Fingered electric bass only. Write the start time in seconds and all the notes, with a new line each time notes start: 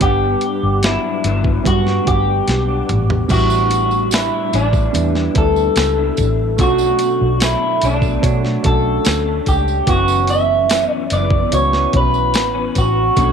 0.01 G1
0.63 G1
1.24 G1
1.66 G2
2.07 G1
2.48 B1
2.90 A1
3.30 A1
4.54 A1
4.95 E2
5.36 D2
5.76 C#2
6.18 A1
6.59 B1
7.21 B1
7.83 B1
8.24 B2
8.65 B1
9.07 D2
9.47 C#2
9.87 F#1
11.12 F#1
11.53 C#2
11.94 B1
12.35 A1
12.76 A1
13.17 B1